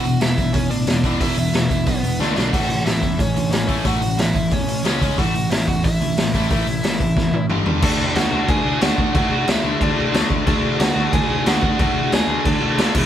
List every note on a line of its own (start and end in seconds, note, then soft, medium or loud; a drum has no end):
0.00 0.16 E1 medium
0.00 0.19 F#4 medium
0.00 0.21 F#5 medium
0.04 0.19 E2 medium
0.04 0.20 B2 medium
0.04 0.20 E3 medium
0.04 0.20 B3 medium
0.04 open hi-hat soft
0.20 0.35 E1 medium
0.20 0.36 E2 medium
0.20 0.36 B2 medium
0.20 0.36 E3 medium
0.20 0.36 B3 medium
0.20 0.52 E4 medium
0.20 0.55 E5 medium
0.20 snare loud
0.20 open hi-hat medium
0.38 0.52 B1 medium
0.38 0.53 E2 medium
0.38 0.53 B2 medium
0.38 0.52 E3 medium
0.38 0.53 B3 medium
0.38 kick medium
0.38 open hi-hat medium
0.53 0.68 E1 medium
0.53 0.69 E2 medium
0.53 0.69 B2 loud
0.53 0.69 E3 medium
0.53 0.69 B3 medium
0.53 0.69 C#4 medium
0.53 0.70 C#5 medium
0.53 kick loud
0.53 open hi-hat medium
0.70 0.85 A1 medium
0.70 0.85 E2 medium
0.70 0.86 B2 medium
0.70 0.85 E3 medium
0.70 0.86 B3 medium
0.70 1.17 D4 medium
0.70 1.22 D5 loud
0.70 open hi-hat medium
0.87 1.15 E1 medium
0.87 1.02 E2 medium
0.87 1.02 B2 medium
0.87 1.02 E3 medium
0.87 1.02 B3 medium
0.87 snare loud
0.87 open hi-hat medium
1.04 1.20 E2 medium
1.04 1.20 B2 medium
1.04 1.19 E3 medium
1.04 1.20 B3 medium
1.04 1.20 E4 medium
1.04 kick medium
1.04 open hi-hat medium
1.20 1.35 E1 medium
1.20 1.36 E2 medium
1.20 1.36 B2 loud
1.20 1.36 E3 medium
1.20 1.36 B3 medium
1.20 1.36 E4 medium
1.20 1.37 E4 medium
1.20 1.36 E5 medium
1.20 kick loud
1.20 open hi-hat medium
1.36 1.50 E1 medium
1.36 1.52 E2 medium
1.36 1.52 B2 medium
1.36 1.52 E3 medium
1.36 1.52 B3 medium
1.36 1.69 E4 medium
1.36 1.69 E5 loud
1.36 open hi-hat medium
1.53 1.67 E1 medium
1.53 1.68 E2 medium
1.53 1.68 B2 medium
1.53 1.69 E3 medium
1.53 1.69 B3 medium
1.53 snare loud
1.53 open hi-hat medium
1.70 1.84 E1 medium
1.70 1.85 E2 medium
1.70 1.85 B2 medium
1.70 1.85 E3 medium
1.70 1.85 B3 medium
1.70 1.86 E4 medium
1.70 1.86 E5 medium
1.70 kick medium
1.70 open hi-hat medium
1.86 2.01 B1 medium
1.86 2.02 E2 medium
1.86 2.02 B2 medium
1.86 2.01 E3 medium
1.86 2.02 B3 medium
1.86 2.18 B3 medium
1.86 2.20 B4 medium
1.86 kick medium
1.86 open hi-hat medium
2.03 2.17 E1 medium
2.03 2.18 E2 medium
2.03 2.18 B2 medium
2.03 2.18 E3 medium
2.03 2.18 B3 medium
2.03 open hi-hat medium
2.20 2.34 D2 medium
2.20 2.35 D3 medium
2.20 2.35 A3 medium
2.20 2.51 D4 medium
2.20 2.36 D4 loud
2.20 2.54 D5 medium
2.20 snare medium
2.36 2.50 B1 medium
2.36 2.52 D3 medium
2.36 2.52 A3 medium
2.36 2.52 D4 medium
2.36 snare loud
2.52 2.81 A1 medium
2.52 2.68 A2 medium
2.52 2.68 E3 medium
2.52 2.69 A3 medium
2.52 2.83 F#4 medium
2.52 2.83 F#5 medium
2.52 kick loud
2.52 open hi-hat medium
2.52 crash medium
2.69 2.84 A2 medium
2.69 2.84 E3 medium
2.69 open hi-hat medium
2.86 3.00 A1 medium
2.86 3.01 A2 medium
2.86 3.01 E3 medium
2.86 3.17 E4 medium
2.86 3.20 E5 medium
2.86 snare loud
2.86 open hi-hat medium
3.03 3.17 E2 medium
3.03 3.17 A2 medium
3.03 3.18 E3 medium
3.03 kick medium
3.03 open hi-hat medium
3.19 3.33 A1 medium
3.19 3.34 A2 medium
3.19 3.34 E3 medium
3.19 3.50 C#4 medium
3.19 3.52 C#5 medium
3.19 kick loud
3.19 open hi-hat medium
3.36 3.50 D2 medium
3.36 3.51 A2 medium
3.36 3.51 E3 medium
3.36 open hi-hat medium
3.51 3.80 A1 medium
3.51 3.67 A2 medium
3.51 3.67 E3 medium
3.51 3.83 C#4 medium
3.51 3.87 C#5 medium
3.51 snare loud
3.51 open hi-hat medium
3.68 3.84 A2 medium
3.68 3.84 E3 medium
3.68 3.85 A3 medium
3.68 kick medium
3.68 open hi-hat medium
3.85 3.99 A1 medium
3.85 4.01 A2 medium
3.85 4.01 E3 medium
3.85 4.01 A3 loud
3.85 4.17 F#4 medium
3.85 4.20 F#5 medium
3.85 kick loud
3.85 open hi-hat medium
4.01 4.16 A1 medium
4.01 4.17 A2 medium
4.01 4.17 E3 medium
4.01 open hi-hat medium
4.17 4.32 A1 medium
4.17 4.33 A2 medium
4.17 4.33 E3 medium
4.17 4.50 E4 medium
4.17 4.53 E5 medium
4.17 snare loud
4.17 open hi-hat medium
4.35 4.49 A1 medium
4.35 4.50 A2 medium
4.35 4.50 E3 medium
4.35 kick medium
4.35 open hi-hat medium
4.51 4.66 E2 loud
4.51 4.66 A2 medium
4.51 4.67 E3 medium
4.51 4.83 C#4 medium
4.51 4.83 C#5 medium
4.51 kick loud
4.51 open hi-hat medium
4.67 4.82 A1 medium
4.67 4.83 A2 medium
4.67 4.83 E3 medium
4.67 open hi-hat medium
4.83 4.98 C#2 medium
4.83 5.00 C#3 medium
4.83 5.01 G#3 loud
4.83 5.01 C#4 loud
4.83 5.16 C#4 medium
4.83 5.20 C#5 medium
4.83 snare loud
4.83 open hi-hat medium
5.01 5.16 C#2 medium
5.01 5.17 C#3 medium
5.01 5.17 G#3 medium
5.01 5.17 C#4 medium
5.01 kick medium
5.01 open hi-hat medium
5.18 5.46 A1 medium
5.18 5.33 A2 medium
5.18 5.34 E3 loud
5.18 5.34 A3 medium
5.18 5.49 F#4 medium
5.18 5.51 F#5 medium
5.18 kick loud
5.18 open hi-hat medium
5.35 5.50 A2 medium
5.35 5.50 E3 medium
5.35 open hi-hat medium
5.51 5.65 A1 medium
5.51 5.66 A2 medium
5.51 5.66 E3 medium
5.51 5.67 E4 medium
5.51 5.68 E5 medium
5.51 snare loud
5.51 open hi-hat medium
5.68 5.82 E2 medium
5.68 5.82 A2 medium
5.68 5.83 E3 medium
5.68 5.83 F#4 medium
5.68 5.84 F#5 medium
5.68 kick medium
5.68 open hi-hat medium
5.84 5.98 A1 medium
5.84 5.99 A2 medium
5.84 5.99 E3 medium
5.84 7.45 E4 medium
5.84 7.46 E5 medium
5.84 kick loud
5.84 open hi-hat medium
6.01 6.15 D2 medium
6.01 6.16 A2 medium
6.01 6.16 E3 medium
6.01 open hi-hat medium
6.17 6.46 A1 medium
6.17 6.33 A2 medium
6.17 6.33 E3 loud
6.17 snare loud
6.17 open hi-hat medium
6.34 6.49 A2 medium
6.34 6.50 E3 medium
6.34 6.50 A3 medium
6.34 kick medium
6.34 open hi-hat medium
6.50 6.65 A1 medium
6.50 6.66 A2 medium
6.50 6.66 E3 medium
6.50 6.66 A3 loud
6.50 kick loud
6.50 open hi-hat medium
6.67 6.81 A1 medium
6.67 6.82 A2 medium
6.67 6.82 E3 medium
6.67 open hi-hat medium
6.84 6.98 A1 medium
6.84 6.99 A2 medium
6.84 6.99 E3 medium
6.84 snare loud
6.84 open hi-hat medium
7.00 7.14 A1 medium
7.00 7.15 A2 medium
7.00 7.15 E3 medium
7.00 kick medium
7.00 open hi-hat medium
7.17 7.31 E2 medium
7.17 7.32 A2 medium
7.17 7.32 E3 medium
7.17 kick loud
7.17 snare medium
7.33 7.48 A1 medium
7.33 7.48 A2 medium
7.33 7.48 E3 medium
7.33 high tom medium
7.50 7.64 G1 medium
7.50 7.64 G2 medium
7.50 7.65 D3 medium
7.50 7.65 G3 medium
7.50 7.65 D4 loud
7.50 7.66 G4 loud
7.50 mid tom medium
7.66 7.80 E2 medium
7.66 7.81 G2 medium
7.66 7.80 D3 medium
7.66 7.81 G3 medium
7.66 7.82 D4 medium
7.66 7.82 G4 loud
7.66 floor tom medium
7.82 8.03 D2 medium
7.82 8.67 D3 loud
7.82 8.66 A3 loud
7.82 8.13 D4 medium
7.82 8.65 D4 loud
7.82 8.64 F#4 loud
7.82 8.14 D5 medium
7.82 kick loud
7.82 crash loud
7.82 crash medium
8.15 8.25 D2 medium
8.15 8.46 F#4 medium
8.15 8.50 F#5 medium
8.15 snare loud
8.15 crash medium
8.32 8.42 D2 medium
8.32 8.80 D3 medium
8.32 8.82 A3 medium
8.32 8.82 D4 medium
8.48 8.59 D2 loud
8.48 8.80 G#4 medium
8.48 8.80 G#5 medium
8.48 kick loud
8.48 crash medium
8.64 8.75 D2 medium
8.64 8.80 D3 medium
8.64 8.81 A3 medium
8.64 8.82 D4 medium
8.64 8.83 F#4 medium
8.80 8.92 D2 loud
8.80 9.13 D3 medium
8.80 9.15 A3 medium
8.80 9.16 D4 loud
8.80 9.12 F#4 medium
8.80 9.17 F#4 loud
8.80 9.13 F#5 medium
8.80 snare loud
8.80 crash medium
8.98 9.08 D2 medium
8.98 kick loud
9.14 9.35 D2 loud
9.14 9.99 D3 medium
9.14 9.98 A3 loud
9.14 9.97 D4 loud
9.14 9.46 F#4 medium
9.14 9.95 F#4 loud
9.14 9.50 F#5 medium
9.14 kick loud
9.14 crash medium
9.48 9.58 D2 medium
9.48 9.80 E4 medium
9.48 9.80 E5 medium
9.48 snare loud
9.48 crash medium
9.63 9.74 D2 medium
9.63 10.13 D3 medium
9.63 10.14 A3 medium
9.63 10.15 D4 medium
9.81 9.91 D2 medium
9.81 10.28 D4 medium
9.81 10.28 D5 medium
9.81 kick loud
9.81 crash medium
9.96 10.07 D2 medium
9.96 10.12 D3 medium
9.96 10.14 A3 medium
9.96 10.15 D4 medium
9.96 10.16 F#4 medium
10.13 10.23 D2 loud
10.13 10.45 D3 medium
10.13 10.47 A3 medium
10.13 10.48 D4 loud
10.13 10.49 F#4 medium
10.13 snare loud
10.13 crash medium
10.30 10.41 D2 medium
10.30 kick medium
10.46 10.67 D2 loud
10.46 11.28 D3 medium
10.46 11.29 A3 medium
10.46 10.78 D4 medium
10.46 11.29 D4 loud
10.46 11.27 F#4 medium
10.46 10.78 D5 medium
10.46 kick loud
10.46 crash medium
10.79 10.90 D2 medium
10.79 11.10 F#4 medium
10.79 11.11 F#5 medium
10.79 snare loud
10.79 crash medium
10.95 11.06 D2 medium
10.95 11.44 D3 medium
10.95 11.44 A3 medium
10.95 11.44 D4 medium
11.13 11.23 D2 loud
11.13 11.43 G#4 medium
11.13 11.47 G#5 medium
11.13 kick loud
11.13 crash medium
11.28 11.40 D2 medium
11.28 11.44 D3 medium
11.28 11.45 A3 medium
11.28 11.45 D4 medium
11.28 11.44 F#4 medium
11.45 11.56 D2 medium
11.45 11.78 D3 medium
11.45 11.78 A3 medium
11.45 11.79 D4 loud
11.45 11.77 F#4 medium
11.45 11.79 F#4 loud
11.45 11.77 F#5 medium
11.45 snare loud
11.45 crash medium
11.63 11.73 D2 medium
11.63 kick medium
11.79 11.99 D2 medium
11.79 12.60 D3 loud
11.79 12.61 A3 loud
11.79 12.61 D4 medium
11.79 12.10 F#4 medium
11.79 12.59 F#4 loud
11.79 12.14 F#5 medium
11.79 kick loud
11.79 crash medium
12.12 12.22 D2 medium
12.12 12.43 G#4 medium
12.12 12.47 G#5 medium
12.12 snare loud
12.12 crash medium
12.27 12.38 D2 medium
12.27 12.76 D3 medium
12.27 12.77 A3 medium
12.27 12.76 D4 medium
12.45 12.55 D2 loud
12.45 12.92 A4 medium
12.45 12.92 A5 loud
12.45 kick loud
12.45 crash medium
12.61 12.71 D2 medium
12.61 12.76 D3 medium
12.61 12.78 A3 medium
12.61 12.77 D4 medium
12.61 12.77 F#4 loud
12.77 12.87 D2 loud
12.77 12.93 D3 medium
12.77 12.94 A3 medium
12.77 12.94 D4 loud
12.77 snare loud
12.77 crash medium
12.81 12.95 F#4 medium
12.94 13.05 E1 medium
12.94 13.06 E2 medium
12.94 13.06 B2 loud
12.94 13.06 E3 medium
12.94 13.06 G#3 medium
12.94 13.06 B3 loud
12.94 13.06 E4 loud
12.94 kick loud
12.94 crash loud